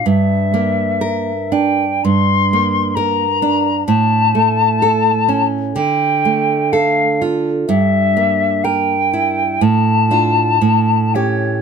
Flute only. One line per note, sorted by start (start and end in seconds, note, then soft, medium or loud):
0.06 1.53 E5 soft
1.52 2.05 G5 medium
2.03 2.96 C6 medium
2.95 3.86 A#5 medium
3.86 5.45 A5 medium
5.75 6.73 G5 medium
6.72 7.20 F5 medium
7.67 8.65 E5 medium
8.64 9.63 G5 medium
9.62 11.16 A5 medium
11.14 11.62 C#5 soft